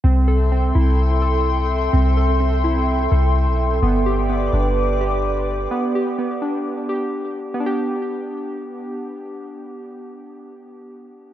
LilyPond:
<<
  \new Staff \with { instrumentName = "Ambient pad" } { \time 4/4 \key g \major \tempo 4 = 127 << { <a' e'' c'''>1~ | <a' e'' c'''>1 | <b' d'' d'''>1 | r1 |
r1 | r1 | } \\ { g''1~ | g''1~ | g''1 | r1 |
r1 | r1 | } >> }
  \new Staff \with { instrumentName = "Synth keys" } { \time 4/4 \key g \major c'8 a'8 c'8 e'4 a'4. | c'8 a'8 c'8 e'4 a'4. | b8 g'8 b8 d'4 g'4. | b8 g'8 b8 d'4 g'4. |
<b d' g'>1~ | <b d' g'>1 | }
  \new Staff \with { instrumentName = "808-style bass" } { \clef bass \time 4/4 \key g \major c,4. c,2~ c,8 | c,2~ c,8 c,8. b,,8. | g,,4. g,,2~ g,,8 | r1 |
r1 | r1 | }
>>